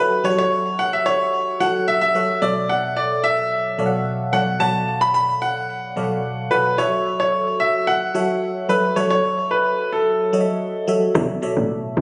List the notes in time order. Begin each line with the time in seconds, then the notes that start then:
Already playing: F#3 F#4 A4 B4 C#5 E5 F#5
0.24 F#3 F#4 G4 C#5 F#5
0.31 A4
0.38 C#5
0.79 F#5
0.93 E5
1.06 C#5
1.60 F#3 F#4 A4 C#5 F#5
1.88 E5
2.01 E5
2.15 F#3 F#4 A4 C#5 F#5
2.42 B2 F#3 A4 C#5 D5 E5
2.69 F#5
2.97 D5
3.24 E5
3.78 B2 F#3 A4 C#5 D5 F5
3.86 F#5
4.32 B2 F#3 A4 C#5 D5 F#5
4.60 B2 F#3 A4 C#5 D5 F#5 A5
5.01 B5
5.14 B5
5.42 F#5
5.96 B2 F#3 A4 C#5 D5 F5
6.04 F#5
6.51 B2 F#3 A4 B4 C#5 D5 F#5
6.78 F#3 F#4 A4 C#5 E5
7.20 C#5
7.60 E5
7.87 F#5
8.14 F#3 F#4 A4 C#5 E5
8.69 F#3 F#4 A4 B4 C#5 E5
8.96 F#3 F#4 A4 C#5 E5
9.10 C#5
9.51 B4
9.93 A4
10.33 F#3 F#4 A4 C#5 D#5
10.41 E5
10.87 F#3 F#4 A4 C#5 E5
11.15 B1 B2 F#3 A4 C#5 D5 E5
11.42 B2 F#3 A4 C#5 D5 E5
11.57 A1
11.97 B1